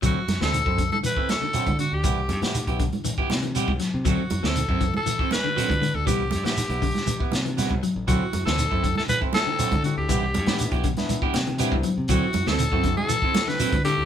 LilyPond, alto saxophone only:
\new Staff \with { instrumentName = "Alto saxophone" } { \time 4/4 \key d \mixolydian \tempo 4 = 119 fis'8. a'4 a'16 b'8 a'4 fis'16 g'16~ | g'4~ g'16 r2 r8. | fis'8. a'4 a'8. b'4~ b'16 a'16 | g'8. g'2 r4 r16 |
fis'8. a'4 a'16 b'8 a'4 fis'16 g'16~ | g'4~ g'16 r2 r8. | fis'8. a'4 a'4 b'8. g'8 | }